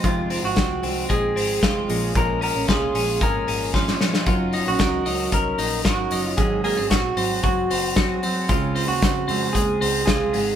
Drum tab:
HH |x-o-x-o-x-o-x-o-|x-o-x-o-x-o-----|x-o-x-o-x-o-x-o-|x-o-x-o-x-o-x-o-|
SD |----o-------o---|----o-------oooo|----o-------o---|----o-------o---|
BD |o---o---o---o---|o---o---o---o---|o---o---o---o---|o---o---o---o---|

HH |x-o-x-o-x-o-x-o-|
SD |----o-------o---|
BD |o---o---o---o---|